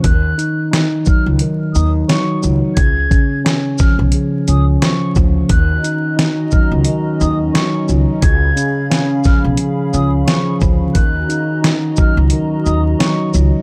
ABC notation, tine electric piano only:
X:1
M:4/4
L:1/8
Q:"Swing 16ths" 1/4=88
K:Ebm
V:1 name="Tine electric piano" clef=bass
E, E E G, E, E G, G, | D, D D F, D, D F, F, | E, E E G, E, E G, G, | D, D D F, D, D F, F, |
E, E E G, E, E G, G, |]